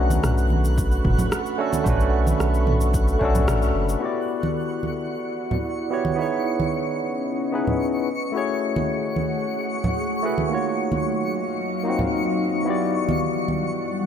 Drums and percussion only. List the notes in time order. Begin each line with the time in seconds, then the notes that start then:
0.10 high conga, shaker
0.24 cross-stick, mid tom, shaker
0.38 shaker
0.50 high conga
0.65 shaker
0.78 kick, shaker
0.92 shaker
1.05 kick, mid tom
1.19 low conga, shaker
1.32 cross-stick, shaker
1.46 shaker
1.73 high conga, shaker
1.86 kick, mid tom, shaker
2.00 shaker
2.27 high conga, shaker
2.40 cross-stick, shaker
2.54 shaker
2.67 mid tom, high conga
2.81 shaker
2.94 kick, shaker
3.08 shaker
3.21 kick
3.35 low conga, shaker
3.48 cross-stick, mid tom, shaker
3.62 shaker
3.89 shaker
4.43 high conga
4.83 high conga
5.51 low conga
6.05 high conga
6.60 high conga
7.67 low conga
8.76 high conga
9.16 high conga
9.84 low conga
10.38 high conga
10.92 high conga
11.99 low conga
13.09 high conga
13.48 high conga